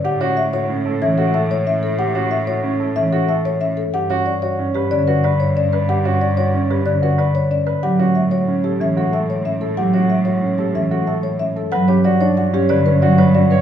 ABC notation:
X:1
M:6/4
L:1/8
Q:1/4=185
K:Glyd
V:1 name="Marimba"
f c e c z2 e A e c e A | f c e c z2 e A e c e A | f c d c z G d B d c d B | f c d c z G d B d c d B |
f c e c z G e A e c e A | f c e c z G e A e c e A | f c d c f G d B d c d B |]
V:2 name="Grand piano"
G F z F C A C F A z3 | G F z F C A C F A z3 | G F z F C B C F B z2 B | G F z F C B C F B z2 B |
G F z F C A C F A z2 A | G F z F C A C F A z2 A | B G F D F C B C F B F c |]
V:3 name="Marimba"
z C z4 E, z3 C z | z C z4 E, z3 C z | z C z4 D, z3 C z | z C z4 D, z3 C z |
F, C z4 E, z3 C z | F, C z4 E, z3 C z | F, C z4 D, z F, z C z |]
V:4 name="Cello" clef=bass
A,,12- | A,,12 | G,,12- | G,,12 |
A,,12- | A,,12 | G,,12 |]